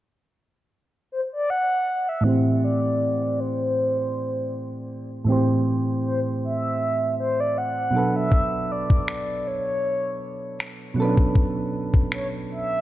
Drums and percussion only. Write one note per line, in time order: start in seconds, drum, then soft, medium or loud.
8.32 kick loud
8.90 kick medium
9.08 finger snap medium
10.60 finger snap loud
11.18 kick medium
11.35 kick loud
11.94 kick medium
12.12 finger snap loud